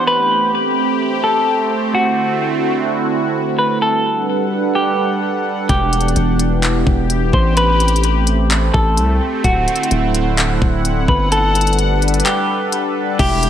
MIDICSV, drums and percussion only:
0, 0, Header, 1, 2, 480
1, 0, Start_track
1, 0, Tempo, 468750
1, 70, Time_signature, 4, 2, 24, 8
1, 13822, End_track
2, 0, Start_track
2, 0, Title_t, "Drums"
2, 5830, Note_on_c, 9, 36, 104
2, 5830, Note_on_c, 9, 42, 75
2, 5932, Note_off_c, 9, 36, 0
2, 5932, Note_off_c, 9, 42, 0
2, 6070, Note_on_c, 9, 42, 70
2, 6150, Note_off_c, 9, 42, 0
2, 6150, Note_on_c, 9, 42, 56
2, 6230, Note_off_c, 9, 42, 0
2, 6230, Note_on_c, 9, 42, 44
2, 6308, Note_off_c, 9, 42, 0
2, 6308, Note_on_c, 9, 42, 72
2, 6411, Note_off_c, 9, 42, 0
2, 6548, Note_on_c, 9, 42, 75
2, 6651, Note_off_c, 9, 42, 0
2, 6790, Note_on_c, 9, 42, 80
2, 6793, Note_on_c, 9, 39, 108
2, 6892, Note_off_c, 9, 42, 0
2, 6896, Note_off_c, 9, 39, 0
2, 7032, Note_on_c, 9, 36, 102
2, 7134, Note_off_c, 9, 36, 0
2, 7269, Note_on_c, 9, 42, 70
2, 7372, Note_off_c, 9, 42, 0
2, 7509, Note_on_c, 9, 36, 85
2, 7611, Note_off_c, 9, 36, 0
2, 7750, Note_on_c, 9, 42, 71
2, 7852, Note_off_c, 9, 42, 0
2, 7990, Note_on_c, 9, 42, 71
2, 8070, Note_off_c, 9, 42, 0
2, 8070, Note_on_c, 9, 42, 58
2, 8150, Note_off_c, 9, 42, 0
2, 8150, Note_on_c, 9, 42, 42
2, 8228, Note_off_c, 9, 42, 0
2, 8228, Note_on_c, 9, 42, 76
2, 8331, Note_off_c, 9, 42, 0
2, 8469, Note_on_c, 9, 42, 73
2, 8571, Note_off_c, 9, 42, 0
2, 8710, Note_on_c, 9, 42, 81
2, 8714, Note_on_c, 9, 39, 112
2, 8812, Note_off_c, 9, 42, 0
2, 8816, Note_off_c, 9, 39, 0
2, 8952, Note_on_c, 9, 36, 101
2, 9054, Note_off_c, 9, 36, 0
2, 9190, Note_on_c, 9, 42, 76
2, 9292, Note_off_c, 9, 42, 0
2, 9670, Note_on_c, 9, 36, 104
2, 9670, Note_on_c, 9, 42, 72
2, 9772, Note_off_c, 9, 36, 0
2, 9772, Note_off_c, 9, 42, 0
2, 9910, Note_on_c, 9, 42, 69
2, 9990, Note_off_c, 9, 42, 0
2, 9990, Note_on_c, 9, 42, 54
2, 10070, Note_off_c, 9, 42, 0
2, 10070, Note_on_c, 9, 42, 42
2, 10149, Note_off_c, 9, 42, 0
2, 10149, Note_on_c, 9, 42, 76
2, 10251, Note_off_c, 9, 42, 0
2, 10389, Note_on_c, 9, 42, 71
2, 10491, Note_off_c, 9, 42, 0
2, 10630, Note_on_c, 9, 42, 81
2, 10634, Note_on_c, 9, 39, 114
2, 10733, Note_off_c, 9, 42, 0
2, 10737, Note_off_c, 9, 39, 0
2, 10872, Note_on_c, 9, 36, 102
2, 10975, Note_off_c, 9, 36, 0
2, 11110, Note_on_c, 9, 42, 72
2, 11212, Note_off_c, 9, 42, 0
2, 11349, Note_on_c, 9, 36, 84
2, 11452, Note_off_c, 9, 36, 0
2, 11590, Note_on_c, 9, 42, 70
2, 11692, Note_off_c, 9, 42, 0
2, 11830, Note_on_c, 9, 42, 74
2, 11890, Note_off_c, 9, 42, 0
2, 11890, Note_on_c, 9, 42, 63
2, 11950, Note_off_c, 9, 42, 0
2, 11950, Note_on_c, 9, 42, 53
2, 12010, Note_off_c, 9, 42, 0
2, 12010, Note_on_c, 9, 42, 42
2, 12068, Note_off_c, 9, 42, 0
2, 12068, Note_on_c, 9, 42, 72
2, 12171, Note_off_c, 9, 42, 0
2, 12310, Note_on_c, 9, 42, 44
2, 12370, Note_off_c, 9, 42, 0
2, 12370, Note_on_c, 9, 42, 54
2, 12430, Note_off_c, 9, 42, 0
2, 12430, Note_on_c, 9, 42, 58
2, 12490, Note_off_c, 9, 42, 0
2, 12490, Note_on_c, 9, 42, 72
2, 12550, Note_off_c, 9, 42, 0
2, 12550, Note_on_c, 9, 42, 83
2, 12554, Note_on_c, 9, 39, 111
2, 12652, Note_off_c, 9, 42, 0
2, 12656, Note_off_c, 9, 39, 0
2, 13030, Note_on_c, 9, 42, 73
2, 13132, Note_off_c, 9, 42, 0
2, 13510, Note_on_c, 9, 36, 116
2, 13510, Note_on_c, 9, 42, 75
2, 13510, Note_on_c, 9, 49, 99
2, 13612, Note_off_c, 9, 36, 0
2, 13613, Note_off_c, 9, 42, 0
2, 13613, Note_off_c, 9, 49, 0
2, 13750, Note_on_c, 9, 42, 73
2, 13822, Note_off_c, 9, 42, 0
2, 13822, End_track
0, 0, End_of_file